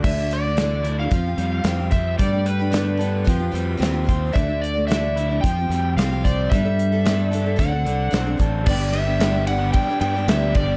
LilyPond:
<<
  \new Staff \with { instrumentName = "Electric slide guitar" } { \time 4/4 \key d \dorian \tempo 4 = 111 e''8 d''4~ d''16 f''4.~ f''16 e''8 | d''8 b'2. r8 | e''8 d''8 e''4 g''4 f''8 d''8 | e''2 fis''4. r8 |
\key g \major d''8 e''4 fis''8 g''8 g''8 e''8 d''8 | }
  \new Staff \with { instrumentName = "Tonewheel organ" } { \time 4/4 \key d \dorian r1 | r1 | r1 | r1 |
\key g \major <g' d'' b''>1 | }
  \new Staff \with { instrumentName = "Steel-string acoustic guitar" } { \time 4/4 \key d \dorian <d e a d' fis' d''>16 <a d' fis' d''>8 <a d' fis' d''>16 <d e a d' fis' d''>8 <a d' fis' d''>16 <a d' fis' d''>16 <f c' f' g'>16 <c' f' g'>16 <f c' f' g'>8 <f c' f' g'>16 <c' f' g'>16 <f c' f' g'>8 | <g, d a b d' g'>16 <a b d' g'>8 <a b d' g'>16 <g, d a b d' g'>8 <a b d' g'>8 <f c' f' g'>16 <c' f' g'>16 <f c' f' g'>8 <f c' f' g'>16 <c' f' g'>16 <f c' f' g'>8 | <d e a d' fis' d''>16 <a d' fis' d''>8 <a d' fis' d''>16 <d e a d' fis' d''>8 <a d' fis' d''>16 <a d' fis' d''>16 <f c' f' g'>16 <c' f' g'>16 <f c' f' g'>8 <f c' f' g'>16 <c' f' g'>16 <f c' f' g'>8 | <g, d g b d' a'>16 <g b d' a'>8 <g b d' a'>16 <g, d g b d' a'>8 <g b d' a'>16 <g b d' a'>16 <d fis c' d' a'>16 <c' d' a'>16 <fis c' d' a'>8 <d fis c' d' a'>16 <c' d' a'>16 <fis c' d' a'>8 |
\key g \major <g, d g b d' g'>8 <g b d' g'>16 <g b d' g'>16 <g, d g b d' g'>16 <g b d' g'>16 <g b d' g'>8. <g b d' g'>16 <g b d' g'>16 <g b d' g'>16 <g, d g b d' g'>8 <g b d' g'>8 | }
  \new Staff \with { instrumentName = "Overdriven electric guitar" } { \time 4/4 \key d \dorian d4 d'8 e'8 f8 g8 c'8 c''8 | g4 d'8 a'8 f8 g8 c'8 c''8 | d4 d'8 e'8 f8 g8 c'8 c''8 | g4 d'8 a'8 d8 d8 c'8 a'8 |
\key g \major <g, d g b d' g'>8 <g b d' g'>8 <g, d g b d' g'>16 <g b d' g'>8 <g b d' g'>8 <g b d' g'>16 <g b d' g'>16 <g b d' g'>16 <g, d g b d' g'>8 <g b d' g'>16 <g b d' g'>16 | }
  \new Staff \with { instrumentName = "Fingered electric bass" } { \clef bass \time 4/4 \key d \dorian d,2 f,8 f,8 f,4 | g,2 f,8 f,8 ees,4 | d,2 f,8 f,8 c,4 | g,2 d,8 c,8 b,,8 a,,8 |
\key g \major g,,2 r8 g,8 d,8 g,,8 | }
  \new DrumStaff \with { instrumentName = "Drums" } \drummode { \time 4/4 <cymc bd>8 hh8 <hh sn>8 hh8 <hh bd>8 hh8 <hh sn>8 <hh bd>8 | <hh bd>8 hh8 <hh sn>8 hh8 <hh bd>8 hh8 <hh sn>8 <hh bd>8 | <hh bd>8 hh8 <hh sn>8 hh8 <hh bd>8 hh8 <hh sn>8 <hh bd>8 | <hh bd>8 hh8 <hh sn>8 hh8 <hh bd>8 hh8 <hh sn>8 <hh bd>8 |
<cymc bd>8 cymr8 <cymr sn>8 cymr8 <bd cymr>8 cymr8 <cymr sn>8 <bd cymr>8 | }
>>